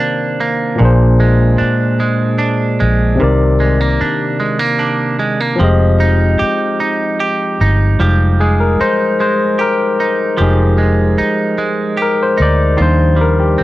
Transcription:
Already playing: C3 D#3 A#3 D4 C5
0.00 D4
0.40 A#3
0.76 A#2 A#3
0.80 A#1 D4 G#4
0.85 C5
1.20 G#3
1.58 D4, muted fingered electric bass stroke
2.00 G#3
2.38 D4
2.80 A#1 G#3
3.15 C3 C4
3.19 C2 C3 D#3 A#4
3.23 D5
3.60 G#3
3.81 A#3
4.01 D4, muted fingered electric bass stroke
4.40 G#3
4.59 A#3
4.79 D4
5.19 G#3
5.40 A#3
5.56 F3 C4
5.60 F1 G#3 G4 D#5
6.00 D#4
6.39 G4, muted fingered electric bass stroke
6.80 D#4
7.20 G4
7.61 G1 D#4
7.99 F1 F3 G3 G#3 D#4 G4
8.40 G#3 G#4
8.60 A#4
8.81 D#4 C5, muted fingered electric bass stroke
9.20 G#3 C5
9.59 G4 A#4
10.00 D#4
10.37 F1 F3 G#3 G4
10.42 D#4 G#4
10.78 G#3
11.18 D#4, muted fingered electric bass stroke
11.58 G#3
11.97 G4
12.02 A#4
12.23 C5
12.38 D2 D#4
12.42 D5
12.77 D#2 D#3 F3 G3 D4 F4
12.82 C5
13.16 G3
13.21 A#4
13.40 G4
13.58 C4

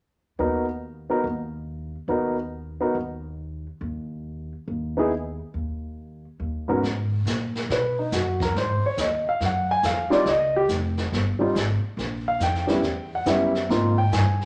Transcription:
0.39 D#2 B3 D#4 F#4 A#4
1.10 B3 D#4 F#4 A#4
1.24 D#2
2.08 D#2 B3 D#4 F#4 A#4
2.81 B3 D#4 F#4 A#4
2.95 D#2
3.81 D#2
4.68 D#2
4.97 B3 D#4 E4 G#4
5.54 D#2
6.40 D#2
6.68 G#2 B3 C#4 F#4 A#4
6.83 G#2, brush sweep, kick, snare
7.26 A#2, kick, snare, hi-hat pedal
7.55 snare
7.69 B2 B4, brush sweep, kick, snare
7.99 D#4
8.12 F#2 F#4, kick, snare, hi-hat pedal
8.40 A#4, kick, snare
8.55 G#2 C5, brush sweep, kick, snare
8.83 C#5, muted upright bass stroke
8.97 D#2 D#5, kick, snare, hi-hat pedal
9.26 F5, muted upright bass stroke
9.40 F#2, brush sweep, kick, snare
9.46 F#5
9.71 G#5
9.83 F2 F5, kick, snare, hi-hat pedal
10.10 G3 C4 D#4 F4 D5, muted upright bass stroke, snare
10.26 C#2 D#5, brush sweep, kick, snare
10.56 G4
10.69 F1, kick, snare, hi-hat pedal
10.97 snare
11.12 G1, brush sweep, kick, snare
11.39 G3 C4 D#4 F4, muted upright bass stroke
11.55 G#1, kick, snare, hi-hat pedal
11.81 muted upright bass stroke
11.97 A#1, brush sweep, kick, snare
12.28 F5
12.40 F2 G5, kick, snare, hi-hat pedal
12.55 snare
12.67 G3 B3 C#4 E4, snare
12.82 E2, brush sweep, kick, snare
13.15 F#5
13.26 F#2 G3 B3 C#4 E4 E5, kick, snare, hi-hat pedal
13.55 snare
13.69 G#2 A#3 C4 D#4 F4, brush sweep, kick, snare
13.98 G5
14.12 G2 G#5, kick, snare, hi-hat pedal
14.41 snare

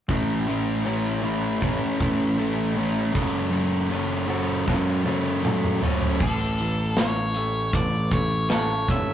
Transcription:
0.09 A1 A2 A3 C#4 E4 A4, kick, open hi-hat
0.47 A3 C#4 E4 A4
0.85 A3 C#4 E4 A4, open hi-hat
1.23 A3 C#4 E4 A4
1.62 A1 A3 C#4 E4 A4, kick, open hi-hat
2.00 A1 E3 A3 C#4 E4 A4, kick
2.38 A3 C#4 E4 A4, open hi-hat
2.76 A3 C#4 E4 A4
3.13 F#1 F#2 F#3 C#4 F#4 A4, kick, open hi-hat
3.51 F#3 C#4 F#4 A4
3.90 F#3 C#4 F#4 A4, open hi-hat
4.27 F#3 C#4 F#4 A4
4.66 F#2 F#3 C#4 F#4 A4, kick, snare
5.04 F#3 C#4 F#4 A4, high tom
5.43 F#3 A3 C#4 F#4 A4, mid tom
5.64 mid tom
5.82 F#3 C#4 F#4 A4, floor tom
6.02 floor tom
6.20 A1 A2 A4, kick, crash
6.58 E3, closed hi-hat
6.97 E3 C#5, snare, closed hi-hat
7.34 A3, closed hi-hat
7.73 A1 E3 D5, kick, closed hi-hat
8.11 A1 A3 C#5, kick, closed hi-hat
8.50 A4 C#5, snare, closed hi-hat
8.88 G#1 C#4 E5, kick, snare, closed hi-hat

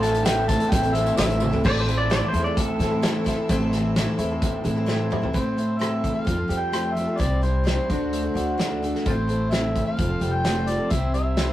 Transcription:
Already playing: A1 A2 E3 A3 C4 E4 A4 C5 E5 A5 E6
0.00 A3 C4 E4 A5, snare, closed hi-hat
0.14 A3 C4 E4 A4, closed hi-hat
0.23 A2 E3 A3 C4 E4 G5, snare, closed hi-hat, tambourine
0.46 A3 C4 E4 A5, kick, closed hi-hat, tambourine
0.50 E4 A4
0.60 A3 C4 E4 A4, closed hi-hat
0.69 A1 E3 A3 C4 E4 G5, kick, closed hi-hat, tambourine
0.83 A3 C4 E4 A4, closed hi-hat, tambourine
0.93 A2 E3 A3 C4 E4 A4 E5, closed hi-hat, tambourine
1.06 A3 C4 E4 A4, closed hi-hat, tambourine
1.17 A1 A2 E3 A3 C4 E4 A4 E5, snare, closed hi-hat, tambourine
1.30 closed hi-hat
1.40 A3 C4 E4 A4, high tom, tambourine
1.51 A3 C4 E4 A4, floor tom, tambourine
1.64 A1 A2 E3 A3 C4 E4 A4 C5 D5 E5 A5 E6, kick, crash
1.80 C5
1.86 E3 A3 C4 E4 A4, closed hi-hat
1.98 D5
2.10 A2 E3 A3 C4 E4 A4 D5, snare, closed hi-hat
2.28 C5
2.33 E2 A3 C4 E4 A4, closed hi-hat
2.44 A3 C4 E4 A4 D5
2.57 C4 A4, kick, closed hi-hat
2.79 A2 E3 A3 C4 E4 A4, snare, closed hi-hat
2.90 A3 C4 E4 A4
3.02 A2 E3 A3 C4 E4 A4, snare, closed hi-hat
3.25 A3 C4 E4 A4, kick, snare, closed hi-hat
3.36 A3 C4 E4 A4
3.49 A1 A2 E3 A3 C4 E4 A4, kick, closed hi-hat
3.72 E3 A3 C4 E4 A4, snare, closed hi-hat
3.96 A2 E3 A3 C4 E4 A4, snare, closed hi-hat
4.18 E2 A3 C4 E4 A4, closed hi-hat
4.30 A3 C4 E4 A4
4.42 C4, kick, closed hi-hat
4.64 A2 E3 A3 C4 E4 A4, closed hi-hat
4.75 A3 C4 E4 A4
4.86 A2 E3 A3 C4 E4 A4, snare
5.10 A3 C4 E4 A4, mid tom
5.22 A3 C4 E4 A4, floor tom
5.33 A2 E3 A3 C4 E4 A4 C5, kick, closed hi-hat
5.57 A3 C4 E4 A4, closed hi-hat
5.79 A2 E3 A3 C4 E4 A4 E5, cross-stick, closed hi-hat
6.03 E3, kick, closed hi-hat
6.14 A3 C4 E4 A4 F5
6.25 F2 F3 G3 C4 F4 A4, kick, closed hi-hat
6.37 C4 F4 A4
6.48 F2 G3 C4 F4 G4 A4, closed hi-hat
6.59 G5
6.72 F3 G3 A3 C4 F4 A4, cross-stick, closed hi-hat
6.93 F3 G3 C4 E5, closed hi-hat
6.98 F4 A4
7.07 C4 F4 A4
7.18 C2 C3 E3 G3 C4 E4 C5 D5, kick, closed hi-hat
7.42 G3 C4 E4 C5, closed hi-hat
7.64 C3 E3 G3 C4 E4 C5, snare, closed hi-hat
7.90 D2 D3 A3 D4 F#4 A4, kick, closed hi-hat
8.13 A3, closed hi-hat
8.23 D4 F#4 A4
8.34 D2 A3 D4 F#4 A4, closed hi-hat
8.58 D3 A3 D4 F#4 A4, snare, closed hi-hat
8.82 D3 A3 D4 F#4 A4, closed hi-hat
8.95 D4 F#4 A4, snare
9.05 A1 A2 E3 A3 C4 E4 F4 A4 C5, kick, closed hi-hat
9.28 A3 C4 E4 A4, closed hi-hat
9.51 A2 E3 A3 C4 E4 A4 E5, snare, closed hi-hat
9.76 E3, kick, closed hi-hat
9.85 A3 C4 E4 A4 F5
9.97 F1 F3 G3 C4 F4 A4, kick, closed hi-hat
10.08 C4 F4 A4
10.20 F1 G3 C4 F4 G4 A4, closed hi-hat
10.33 G5
10.44 F3 G3 A3 C4 F4 A4, snare, closed hi-hat
10.66 F3 G3 C4 F4 A4 D5, closed hi-hat
10.78 C4 F4 A4
10.90 C2 C3 E3 G3 C4 E4 C5 E5, kick, closed hi-hat
11.14 G3 C4 E4 C5 E5, closed hi-hat
11.36 C3 E3 G3 C4 E4 C5, snare, closed hi-hat

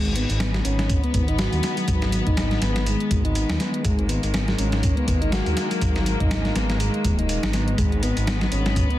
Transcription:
Already playing: G#1 D#3 G#3 B3
0.05 closed hi-hat
0.16 B3, closed hi-hat
0.30 G#1, closed hi-hat
0.40 B3, snare, closed hi-hat
0.54 F#3, snare, closed hi-hat
0.65 G#1 C#4, closed hi-hat
0.79 snare, closed hi-hat
0.89 kick, closed hi-hat
1.04 B3, closed hi-hat
1.14 G#1 B3, kick, closed hi-hat
1.28 D#4, closed hi-hat
1.39 F#4, snare, closed hi-hat
1.53 D#2, closed hi-hat
1.63 snare, closed hi-hat
1.77 F#3, closed hi-hat
1.88 G#1, kick, closed hi-hat
2.02 snare, closed hi-hat
2.12 closed hi-hat
2.27 G#1 D#4, kick, closed hi-hat
2.37 snare, closed hi-hat
2.51 snare, closed hi-hat
2.62 G#1 B3, snare, closed hi-hat
2.76 snare, closed hi-hat
2.86 G#3, closed hi-hat
3.00 closed hi-hat
3.11 G#1, kick, closed hi-hat
3.25 D#4, closed hi-hat
3.35 closed hi-hat
3.49 D#2, snare, closed hi-hat
3.60 B3, snare, closed hi-hat
3.74 closed hi-hat
3.85 G#1 G#3 A#3, kick, closed hi-hat
3.99 closed hi-hat
4.09 B3, closed hi-hat
4.23 G#1, closed hi-hat
4.34 B3, snare, closed hi-hat
4.48 F#3, snare, closed hi-hat
4.58 G#1 C#4, closed hi-hat
4.72 snare, closed hi-hat
4.83 kick, closed hi-hat
4.97 B3, closed hi-hat
5.08 G#1 B3, kick, closed hi-hat
5.22 D#4, closed hi-hat
5.32 F#4, snare, closed hi-hat
5.46 D#2, closed hi-hat
5.57 snare, closed hi-hat
5.71 F#3, closed hi-hat
5.82 G#1, kick, closed hi-hat
5.96 snare, closed hi-hat
6.06 closed hi-hat
6.20 G#1 D#4, kick, closed hi-hat
6.31 snare, closed hi-hat
6.45 snare, closed hi-hat
6.55 G#1 B3, snare, closed hi-hat
6.70 snare, closed hi-hat
6.80 G#3, closed hi-hat
6.94 closed hi-hat
7.05 D#1, kick, closed hi-hat
7.19 D#4, closed hi-hat
7.29 closed hi-hat
7.43 G#1, snare, closed hi-hat
7.53 B3, snare, closed hi-hat
7.68 closed hi-hat
7.78 G#1 G#3 B3, kick, closed hi-hat
7.92 closed hi-hat
8.03 B3, closed hi-hat
8.17 G#1, closed hi-hat
8.27 B3, snare, closed hi-hat
8.41 F#3, snare, closed hi-hat
8.52 G#1 C#4, closed hi-hat
8.66 snare, closed hi-hat
8.76 kick, closed hi-hat
8.90 B3, closed hi-hat

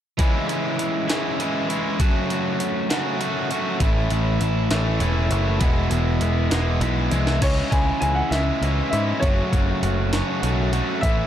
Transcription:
0.18 C#3 E3 G#3 C#4 E4, kick, closed hi-hat
0.48 G#3 C#4 E4, closed hi-hat
0.79 closed hi-hat
1.08 C#3 E3 G#3 C#4 E4, snare, closed hi-hat
1.40 E3 G#3 C#4 E4, closed hi-hat
1.68 G#3 C#4 E4, closed hi-hat
1.99 F#2 C#3 F#3 A3 C#4 F#4, kick, closed hi-hat
2.30 F#3 A3 C#4 F#4, closed hi-hat
2.60 closed hi-hat
2.89 F#2 C#3 F#3 A3 C#4 F#4, snare, closed hi-hat
3.19 F#3 A3 C#4 F#4, closed hi-hat
3.50 F#3 A3 C#4 F#4, closed hi-hat
3.80 A1 A2 E3 A3 C#4 E4, kick, closed hi-hat
4.10 A1 A3 C#4 E4, closed hi-hat
4.40 A1, closed hi-hat
4.70 A1 A2 E3 A3 C#4 E4, snare, closed hi-hat
5.00 E1 E3 A3 C#4 E4, closed hi-hat
5.31 F#1 A3 C#4 E4, closed hi-hat
5.60 E1 E2 B2 E3 G#3 B3 E4, kick, closed hi-hat
5.89 E1 E3 G#3 B3 E4, closed hi-hat
6.20 E1, closed hi-hat
6.51 E1 E2 B2 E3 G#3 B3 E4, snare, closed hi-hat
6.81 B1 E3 G#3 B3 E4, closed hi-hat
7.11 C2 E3 G#3 B3 E4, closed hi-hat, high tom
7.27 snare
7.42 C#2 C#3 E3 G#3 C#4 E4 C#5, kick, closed hi-hat, crash
7.70 C#2 G#3 C#4 E4 G#5, kick, closed hi-hat
8.00 C#2 G#5, closed hi-hat
8.15 F#5
8.30 C#2 E3 G#3 C#4 E4 E5, snare, closed hi-hat
8.34 C#3
8.61 C#2 E3 G#3 C#4 E4, closed hi-hat
8.89 G#2 E4 E5, closed hi-hat
8.94 G#3 C#4
9.20 F#1 F#2 C#3 F#3 A3 C#4 C#5, kick, closed hi-hat
9.25 F#4
9.53 F#1 F#3 A3 C#4 F#4, kick, closed hi-hat
9.83 F#1, closed hi-hat
10.13 F#2 C#3 F#3 A3 C#4 F#4, snare, closed hi-hat
10.42 B1 F#3 A3 C#4 F#4, closed hi-hat
10.73 F#3 A3 C#4 F#4, closed hi-hat
11.01 A1 A2 E3 A3 C#4 E5, kick, closed hi-hat
11.05 E4

